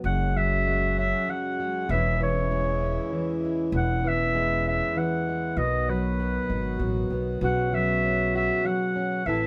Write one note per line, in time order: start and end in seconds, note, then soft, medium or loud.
0.04 1.12 F#1 medium
0.04 1.86 F#2 medium
0.04 5.53 C#3 medium
0.04 5.53 G#3 medium
0.04 1.88 F#4 medium
0.04 0.38 F#5 loud
0.36 1.27 F#3 medium
0.36 0.97 E5 loud
0.67 1.59 G#3 medium
0.98 1.93 C#4 medium
0.98 1.31 E5 medium
1.28 1.86 F#3 medium
1.28 1.92 F#5 medium
1.60 1.91 G#3 medium
1.88 2.96 E1 loud
1.88 3.73 E2 medium
1.88 3.71 E3 medium
1.88 2.20 E3 medium
1.88 2.51 G#3 medium
1.88 5.53 E4 medium
1.88 2.21 E5 medium
1.93 2.83 C#4 medium
1.93 5.59 E4 medium
2.20 3.12 E3 medium
2.20 3.40 C#5 medium
2.51 3.43 G#3 medium
2.83 3.70 C#4 medium
3.13 4.03 E3 medium
3.45 4.34 G#3 medium
3.72 4.80 E1 medium
3.72 5.57 E2 medium
3.72 5.56 B3 medium
3.77 4.09 F#5 loud
4.04 4.95 E3 medium
4.04 4.67 E5 loud
4.35 5.27 G#3 medium
4.67 5.54 C#4 medium
4.67 4.99 E5 loud
4.97 5.58 E3 medium
4.97 5.59 F#5 medium
5.29 5.58 G#3 medium
5.57 6.37 B1 medium
5.57 7.41 B2 medium
5.57 7.40 D#3 medium
5.57 9.23 F#3 medium
5.57 7.40 B3 medium
5.57 9.23 F#4 medium
5.57 5.91 D#5 medium
5.89 6.80 F#3 medium
5.89 7.11 B4 medium
6.20 7.12 B3 medium
6.50 6.77 G#1 medium
6.50 7.38 D#4 medium
6.79 7.07 A1 medium
6.79 7.38 F#3 medium
7.10 7.38 B1 medium
7.10 7.43 B3 medium
7.41 8.49 B1 medium
7.41 9.26 B2 medium
7.41 9.24 C#3 medium
7.41 7.72 F#3 medium
7.41 9.24 B3 medium
7.41 8.04 C#4 medium
7.41 8.34 F#4 medium
7.41 7.76 F#5 loud
7.73 8.64 F#3 medium
7.73 8.35 E5 loud
8.05 8.95 C#4 soft
8.35 9.23 F#4 medium
8.35 8.67 E5 medium
8.65 9.22 F#3 medium
8.65 9.28 F#5 medium
8.96 9.22 C#4 medium
9.26 9.47 A1 medium
9.26 9.47 A2 medium
9.26 9.47 C3 medium
9.26 9.47 E3 medium
9.26 9.47 C4 medium
9.26 9.47 E4 medium
9.26 9.47 A4 medium
9.26 9.47 E5 medium